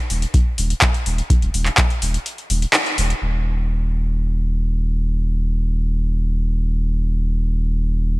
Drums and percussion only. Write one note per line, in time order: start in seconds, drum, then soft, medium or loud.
0.10 open hi-hat loud
0.22 closed hi-hat medium
0.34 kick loud
0.34 closed hi-hat medium
0.58 open hi-hat loud
0.70 closed hi-hat medium
0.82 kick loud
0.82 clap loud
0.82 closed hi-hat medium
0.94 closed hi-hat soft
1.06 open hi-hat loud
1.18 closed hi-hat medium
1.30 kick loud
1.30 closed hi-hat medium
1.42 closed hi-hat soft
1.54 open hi-hat loud
1.66 clap soft
1.66 closed hi-hat medium
1.78 kick loud
1.78 clap loud
1.78 closed hi-hat medium
1.90 closed hi-hat soft
2.02 open hi-hat loud
2.14 closed hi-hat medium
2.26 closed hi-hat medium
2.38 closed hi-hat soft
2.50 open hi-hat loud
2.62 closed hi-hat medium
2.74 clap loud
2.74 closed hi-hat medium
2.86 closed hi-hat soft
2.98 open hi-hat loud
3.10 closed hi-hat medium